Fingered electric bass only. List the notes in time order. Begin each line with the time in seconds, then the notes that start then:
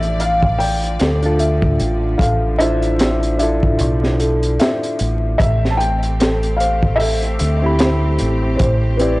Already playing: A1
1.01 D2
1.81 A1
2.19 A1
3.81 B1
5.01 A1
5.40 A1
7.41 D2
8.21 A1
8.60 A1